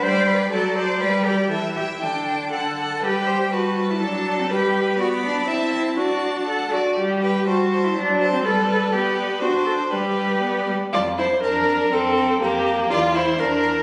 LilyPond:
<<
  \new Staff \with { instrumentName = "Violin" } { \time 2/4 \key g \major \tempo 4 = 122 g''8 g''8 a''8 a''8 | g''8 g''8 g''8 g''8 | a''8 a''8 a''8 a''8 | g''4 a''4~ |
a''4 b''4 | b''4 a''4 | a''4. r8 | r8 g''8 a''8 a''8 |
r8 a''8 d''8 d''8 | d''4 d''4 | d''4. r8 | \key f \major a''8 a''8 a''8 a''8 |
bes''8 bes''8 bes''8 bes''8 | c'''8 c'''8 c'''8 c'''8 | }
  \new Staff \with { instrumentName = "Violin" } { \time 2/4 \key g \major d''8 d''8 d''8 d''8 | d''8 d''8 e''8 e''8 | g''8 g''8 fis''8 fis''8 | b'8 c''8 b'4 |
a'4 b'4 | d''4 e''8 e''8 | d''4 fis''8 d''8 | r8 b'8 c''8 c''8 |
r8 c''8 b'8 b'8 | b'4 c''4 | b'4. r8 | \key f \major f'8 e'8 d'4 |
c'4 bes4 | f'8 e'8 d'4 | }
  \new Staff \with { instrumentName = "Cello" } { \time 2/4 \key g \major c''8 b'8 a'8 c''8 | b'8 g'8 a'8 g'8 | d'4 a'4 | g'4 fis'8. e'16 |
d'8. c'16 g'4 | fis'8 d'8 e'4 | fis'4 a'8 fis'8 | g'4 fis'8. e'16 |
d'8. c'16 a'4 | g'4 fis'8 a'8 | g'4. r8 | \key f \major f,4 f,4 |
f,4 f,4 | e,4 e,4 | }
  \new Staff \with { instrumentName = "Viola" } { \clef bass \time 2/4 \key g \major g4 fis4 | g4 e4 | d4 d4 | g4 g4 |
fis4 g4 | b4 c'4 | d'4. r8 | g4 g4 |
fis4 g4 | b4 d'4 | g4 b8 g8 | \key f \major d''8 c''8 bes'4 |
a'4 g'4 | d''8 c''8 bes'4 | }
>>